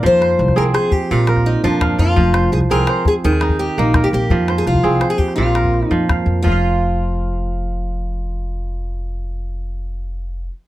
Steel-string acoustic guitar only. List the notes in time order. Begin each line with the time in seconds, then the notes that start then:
0.06 C5
0.58 A#4
0.74 G#4
0.92 G4
1.11 F4
1.46 D#4
1.64 D4
1.99 F4
2.53 G#4
2.71 A#4
3.08 G#4
3.24 G#4
3.59 G4
3.79 D#4
4.04 G4
4.14 G4
4.58 G#4
4.67 F4
5.10 G#4
5.18 G4
5.36 F4
5.87 D#4
6.42 F4